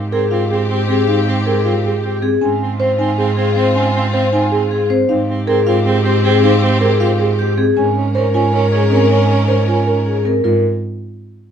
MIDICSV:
0, 0, Header, 1, 6, 480
1, 0, Start_track
1, 0, Key_signature, -4, "major"
1, 0, Tempo, 382166
1, 1356, Time_signature, 7, 3, 24, 8
1, 14462, End_track
2, 0, Start_track
2, 0, Title_t, "Vibraphone"
2, 0, Program_c, 0, 11
2, 158, Note_on_c, 0, 68, 80
2, 390, Note_on_c, 0, 77, 97
2, 469, Note_off_c, 0, 68, 0
2, 707, Note_off_c, 0, 77, 0
2, 876, Note_on_c, 0, 67, 70
2, 1109, Note_on_c, 0, 68, 98
2, 1188, Note_off_c, 0, 67, 0
2, 1348, Note_on_c, 0, 77, 87
2, 1426, Note_off_c, 0, 68, 0
2, 1666, Note_off_c, 0, 77, 0
2, 1833, Note_on_c, 0, 68, 81
2, 2074, Note_on_c, 0, 77, 88
2, 2148, Note_off_c, 0, 68, 0
2, 2388, Note_off_c, 0, 77, 0
2, 2559, Note_on_c, 0, 67, 78
2, 2792, Note_on_c, 0, 68, 104
2, 2870, Note_off_c, 0, 67, 0
2, 3032, Note_on_c, 0, 80, 90
2, 3107, Note_off_c, 0, 68, 0
2, 3347, Note_off_c, 0, 80, 0
2, 3516, Note_on_c, 0, 72, 82
2, 3751, Note_on_c, 0, 80, 94
2, 3828, Note_off_c, 0, 72, 0
2, 4067, Note_off_c, 0, 80, 0
2, 4229, Note_on_c, 0, 68, 81
2, 4474, Note_on_c, 0, 72, 101
2, 4546, Note_off_c, 0, 68, 0
2, 4711, Note_on_c, 0, 80, 98
2, 4788, Note_off_c, 0, 72, 0
2, 5027, Note_off_c, 0, 80, 0
2, 5196, Note_on_c, 0, 72, 83
2, 5433, Note_on_c, 0, 80, 103
2, 5509, Note_off_c, 0, 72, 0
2, 5748, Note_off_c, 0, 80, 0
2, 5916, Note_on_c, 0, 68, 92
2, 6156, Note_on_c, 0, 72, 113
2, 6228, Note_off_c, 0, 68, 0
2, 6393, Note_on_c, 0, 77, 103
2, 6468, Note_off_c, 0, 72, 0
2, 6707, Note_off_c, 0, 77, 0
2, 6872, Note_on_c, 0, 68, 93
2, 7117, Note_on_c, 0, 77, 116
2, 7187, Note_off_c, 0, 68, 0
2, 7429, Note_off_c, 0, 77, 0
2, 7597, Note_on_c, 0, 67, 98
2, 7845, Note_on_c, 0, 68, 121
2, 7909, Note_off_c, 0, 67, 0
2, 8078, Note_on_c, 0, 77, 116
2, 8152, Note_off_c, 0, 68, 0
2, 8389, Note_off_c, 0, 77, 0
2, 8559, Note_on_c, 0, 68, 93
2, 8795, Note_on_c, 0, 77, 111
2, 8870, Note_off_c, 0, 68, 0
2, 9108, Note_off_c, 0, 77, 0
2, 9281, Note_on_c, 0, 67, 99
2, 9517, Note_on_c, 0, 68, 108
2, 9590, Note_off_c, 0, 67, 0
2, 9755, Note_on_c, 0, 80, 102
2, 9829, Note_off_c, 0, 68, 0
2, 10068, Note_off_c, 0, 80, 0
2, 10244, Note_on_c, 0, 70, 94
2, 10481, Note_on_c, 0, 80, 114
2, 10551, Note_off_c, 0, 70, 0
2, 10790, Note_off_c, 0, 80, 0
2, 10955, Note_on_c, 0, 68, 85
2, 11198, Note_on_c, 0, 70, 104
2, 11268, Note_off_c, 0, 68, 0
2, 11441, Note_on_c, 0, 80, 93
2, 11509, Note_off_c, 0, 70, 0
2, 11750, Note_off_c, 0, 80, 0
2, 11921, Note_on_c, 0, 70, 77
2, 12161, Note_on_c, 0, 80, 97
2, 12230, Note_off_c, 0, 70, 0
2, 12470, Note_off_c, 0, 80, 0
2, 12637, Note_on_c, 0, 68, 81
2, 12877, Note_on_c, 0, 70, 102
2, 12949, Note_off_c, 0, 68, 0
2, 13099, Note_off_c, 0, 70, 0
2, 13114, Note_on_c, 0, 70, 93
2, 13338, Note_off_c, 0, 70, 0
2, 14462, End_track
3, 0, Start_track
3, 0, Title_t, "Marimba"
3, 0, Program_c, 1, 12
3, 156, Note_on_c, 1, 70, 95
3, 394, Note_on_c, 1, 65, 80
3, 468, Note_off_c, 1, 70, 0
3, 634, Note_on_c, 1, 68, 82
3, 708, Note_off_c, 1, 65, 0
3, 948, Note_off_c, 1, 68, 0
3, 1116, Note_on_c, 1, 60, 78
3, 1355, Note_on_c, 1, 63, 76
3, 1429, Note_off_c, 1, 60, 0
3, 1668, Note_off_c, 1, 63, 0
3, 1839, Note_on_c, 1, 70, 94
3, 2077, Note_on_c, 1, 65, 73
3, 2150, Note_off_c, 1, 70, 0
3, 2316, Note_on_c, 1, 68, 81
3, 2389, Note_off_c, 1, 65, 0
3, 2629, Note_off_c, 1, 68, 0
3, 2795, Note_on_c, 1, 60, 86
3, 3031, Note_on_c, 1, 61, 77
3, 3108, Note_off_c, 1, 60, 0
3, 3347, Note_off_c, 1, 61, 0
3, 3513, Note_on_c, 1, 72, 109
3, 3753, Note_on_c, 1, 63, 79
3, 3828, Note_off_c, 1, 72, 0
3, 3995, Note_on_c, 1, 68, 88
3, 4068, Note_off_c, 1, 63, 0
3, 4308, Note_off_c, 1, 68, 0
3, 4474, Note_on_c, 1, 60, 86
3, 4715, Note_on_c, 1, 61, 83
3, 4788, Note_off_c, 1, 60, 0
3, 5028, Note_off_c, 1, 61, 0
3, 5195, Note_on_c, 1, 72, 114
3, 5437, Note_on_c, 1, 63, 85
3, 5508, Note_off_c, 1, 72, 0
3, 5675, Note_on_c, 1, 68, 99
3, 5749, Note_off_c, 1, 63, 0
3, 5988, Note_off_c, 1, 68, 0
3, 6156, Note_on_c, 1, 60, 90
3, 6394, Note_on_c, 1, 63, 87
3, 6469, Note_off_c, 1, 60, 0
3, 6708, Note_off_c, 1, 63, 0
3, 6876, Note_on_c, 1, 70, 121
3, 7119, Note_on_c, 1, 65, 95
3, 7189, Note_off_c, 1, 70, 0
3, 7358, Note_on_c, 1, 68, 90
3, 7430, Note_off_c, 1, 65, 0
3, 7669, Note_off_c, 1, 68, 0
3, 7837, Note_on_c, 1, 60, 91
3, 8074, Note_on_c, 1, 63, 92
3, 8149, Note_off_c, 1, 60, 0
3, 8388, Note_off_c, 1, 63, 0
3, 8553, Note_on_c, 1, 70, 114
3, 8797, Note_on_c, 1, 65, 87
3, 8868, Note_off_c, 1, 70, 0
3, 9035, Note_on_c, 1, 68, 96
3, 9109, Note_off_c, 1, 65, 0
3, 9348, Note_off_c, 1, 68, 0
3, 9516, Note_on_c, 1, 60, 89
3, 9756, Note_on_c, 1, 61, 89
3, 9829, Note_off_c, 1, 60, 0
3, 10068, Note_off_c, 1, 61, 0
3, 10235, Note_on_c, 1, 72, 113
3, 10476, Note_on_c, 1, 65, 83
3, 10548, Note_off_c, 1, 72, 0
3, 10712, Note_on_c, 1, 70, 90
3, 10789, Note_off_c, 1, 65, 0
3, 11027, Note_off_c, 1, 70, 0
3, 11195, Note_on_c, 1, 60, 86
3, 11433, Note_on_c, 1, 61, 77
3, 11508, Note_off_c, 1, 60, 0
3, 11747, Note_off_c, 1, 61, 0
3, 11910, Note_on_c, 1, 72, 101
3, 12156, Note_on_c, 1, 65, 81
3, 12227, Note_off_c, 1, 72, 0
3, 12395, Note_on_c, 1, 70, 83
3, 12469, Note_off_c, 1, 65, 0
3, 12708, Note_off_c, 1, 70, 0
3, 12875, Note_on_c, 1, 60, 81
3, 13120, Note_on_c, 1, 65, 91
3, 13188, Note_off_c, 1, 60, 0
3, 13341, Note_off_c, 1, 65, 0
3, 14462, End_track
4, 0, Start_track
4, 0, Title_t, "String section"
4, 0, Program_c, 2, 48
4, 0, Note_on_c, 2, 60, 74
4, 0, Note_on_c, 2, 67, 82
4, 2747, Note_off_c, 2, 60, 0
4, 2748, Note_off_c, 2, 67, 0
4, 3032, Note_on_c, 2, 60, 81
4, 3035, Note_on_c, 2, 65, 84
4, 6104, Note_off_c, 2, 60, 0
4, 6106, Note_off_c, 2, 65, 0
4, 6397, Note_on_c, 2, 60, 95
4, 6399, Note_on_c, 2, 67, 88
4, 9467, Note_off_c, 2, 60, 0
4, 9468, Note_off_c, 2, 67, 0
4, 9747, Note_on_c, 2, 70, 89
4, 9748, Note_on_c, 2, 61, 85
4, 12822, Note_off_c, 2, 61, 0
4, 12822, Note_off_c, 2, 70, 0
4, 14462, End_track
5, 0, Start_track
5, 0, Title_t, "Soprano saxophone"
5, 0, Program_c, 3, 64
5, 152, Note_on_c, 3, 60, 70
5, 322, Note_off_c, 3, 60, 0
5, 391, Note_on_c, 3, 60, 80
5, 561, Note_off_c, 3, 60, 0
5, 635, Note_on_c, 3, 60, 73
5, 804, Note_off_c, 3, 60, 0
5, 874, Note_on_c, 3, 60, 90
5, 1043, Note_off_c, 3, 60, 0
5, 1115, Note_on_c, 3, 60, 92
5, 1283, Note_off_c, 3, 60, 0
5, 1357, Note_on_c, 3, 60, 77
5, 1525, Note_off_c, 3, 60, 0
5, 1599, Note_on_c, 3, 60, 86
5, 1766, Note_off_c, 3, 60, 0
5, 1841, Note_on_c, 3, 60, 75
5, 2007, Note_off_c, 3, 60, 0
5, 2073, Note_on_c, 3, 60, 70
5, 2243, Note_off_c, 3, 60, 0
5, 2319, Note_on_c, 3, 60, 57
5, 2486, Note_off_c, 3, 60, 0
5, 2561, Note_on_c, 3, 60, 45
5, 2727, Note_off_c, 3, 60, 0
5, 3039, Note_on_c, 3, 60, 41
5, 3206, Note_off_c, 3, 60, 0
5, 3271, Note_on_c, 3, 60, 59
5, 3441, Note_off_c, 3, 60, 0
5, 3511, Note_on_c, 3, 60, 73
5, 3681, Note_off_c, 3, 60, 0
5, 3749, Note_on_c, 3, 60, 80
5, 3920, Note_off_c, 3, 60, 0
5, 3989, Note_on_c, 3, 60, 87
5, 4160, Note_off_c, 3, 60, 0
5, 4230, Note_on_c, 3, 60, 86
5, 4401, Note_off_c, 3, 60, 0
5, 4472, Note_on_c, 3, 60, 102
5, 4642, Note_off_c, 3, 60, 0
5, 4715, Note_on_c, 3, 60, 87
5, 4884, Note_off_c, 3, 60, 0
5, 4960, Note_on_c, 3, 60, 85
5, 5127, Note_off_c, 3, 60, 0
5, 5194, Note_on_c, 3, 60, 93
5, 5363, Note_off_c, 3, 60, 0
5, 5438, Note_on_c, 3, 60, 76
5, 5606, Note_off_c, 3, 60, 0
5, 5679, Note_on_c, 3, 60, 61
5, 5846, Note_off_c, 3, 60, 0
5, 5919, Note_on_c, 3, 60, 48
5, 6086, Note_off_c, 3, 60, 0
5, 6393, Note_on_c, 3, 60, 48
5, 6562, Note_off_c, 3, 60, 0
5, 6631, Note_on_c, 3, 60, 68
5, 6801, Note_off_c, 3, 60, 0
5, 6875, Note_on_c, 3, 60, 88
5, 7044, Note_off_c, 3, 60, 0
5, 7116, Note_on_c, 3, 60, 89
5, 7284, Note_off_c, 3, 60, 0
5, 7353, Note_on_c, 3, 60, 100
5, 7522, Note_off_c, 3, 60, 0
5, 7592, Note_on_c, 3, 60, 96
5, 7762, Note_off_c, 3, 60, 0
5, 7839, Note_on_c, 3, 60, 112
5, 8006, Note_off_c, 3, 60, 0
5, 8074, Note_on_c, 3, 60, 95
5, 8243, Note_off_c, 3, 60, 0
5, 8313, Note_on_c, 3, 60, 95
5, 8482, Note_off_c, 3, 60, 0
5, 8549, Note_on_c, 3, 60, 89
5, 8720, Note_off_c, 3, 60, 0
5, 8792, Note_on_c, 3, 60, 78
5, 8962, Note_off_c, 3, 60, 0
5, 9037, Note_on_c, 3, 60, 62
5, 9205, Note_off_c, 3, 60, 0
5, 9277, Note_on_c, 3, 60, 46
5, 9445, Note_off_c, 3, 60, 0
5, 9755, Note_on_c, 3, 61, 51
5, 9923, Note_off_c, 3, 61, 0
5, 9995, Note_on_c, 3, 61, 62
5, 10163, Note_off_c, 3, 61, 0
5, 10236, Note_on_c, 3, 61, 79
5, 10404, Note_off_c, 3, 61, 0
5, 10474, Note_on_c, 3, 61, 84
5, 10643, Note_off_c, 3, 61, 0
5, 10713, Note_on_c, 3, 61, 91
5, 10882, Note_off_c, 3, 61, 0
5, 10954, Note_on_c, 3, 61, 90
5, 11123, Note_off_c, 3, 61, 0
5, 11200, Note_on_c, 3, 61, 92
5, 11367, Note_off_c, 3, 61, 0
5, 11438, Note_on_c, 3, 61, 87
5, 11606, Note_off_c, 3, 61, 0
5, 11680, Note_on_c, 3, 61, 89
5, 11847, Note_off_c, 3, 61, 0
5, 11914, Note_on_c, 3, 61, 82
5, 12083, Note_off_c, 3, 61, 0
5, 12160, Note_on_c, 3, 61, 69
5, 12327, Note_off_c, 3, 61, 0
5, 12401, Note_on_c, 3, 61, 55
5, 12568, Note_off_c, 3, 61, 0
5, 12643, Note_on_c, 3, 61, 41
5, 12809, Note_off_c, 3, 61, 0
5, 14462, End_track
6, 0, Start_track
6, 0, Title_t, "Cello"
6, 0, Program_c, 4, 42
6, 0, Note_on_c, 4, 44, 72
6, 2890, Note_off_c, 4, 44, 0
6, 3036, Note_on_c, 4, 44, 74
6, 6250, Note_off_c, 4, 44, 0
6, 6395, Note_on_c, 4, 44, 88
6, 9610, Note_off_c, 4, 44, 0
6, 9752, Note_on_c, 4, 44, 95
6, 12968, Note_off_c, 4, 44, 0
6, 13115, Note_on_c, 4, 44, 80
6, 13339, Note_off_c, 4, 44, 0
6, 14462, End_track
0, 0, End_of_file